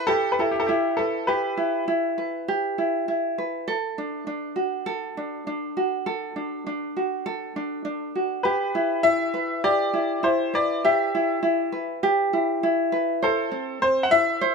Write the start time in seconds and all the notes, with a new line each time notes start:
Already playing: E4 B4
0.07 G4 A4
0.32 B4
0.39 E4 A4
0.51 G4
0.60 A4
0.67 E4 G4
0.97 A4 B4
1.27 G4 B4
1.57 E4
1.88 E4
2.18 B4
2.48 G4
2.78 E4
3.08 E4
3.38 B4
3.68 A4
3.98 D4
4.27 D4
4.56 F#4
4.86 A4
5.17 D4
5.47 D4
5.77 F#4
6.06 A4
6.36 D4
6.67 D4
6.97 F#4
7.26 A4
7.56 D4
7.85 D4
8.15 F#4
8.43 G4 B4
8.75 E4
9.03 E4 E5
9.34 B4
9.64 G4 D5
9.93 E4
10.23 E4 C5
10.54 B4 D5
10.84 G4 E5
11.15 E4
11.43 E4
11.72 B4
12.03 G4
12.33 E4
12.63 E4
12.92 B4
13.22 A4 C5
13.52 C4
13.82 C4 C5
14.03 F#5
14.11 E4 E5
14.41 C5